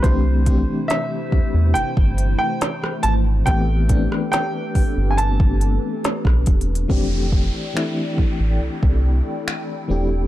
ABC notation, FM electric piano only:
X:1
M:4/4
L:1/8
Q:1/4=70
K:Flyd
V:1 name="FM electric piano"
[E,A,CDG] [E,A,CDG]4 z3 | [E,A,B,CG] [E,A,B,CD]4 z3 | [E,A,CDG]2 [E,A,CDE]4 z [E,A,CDG] |]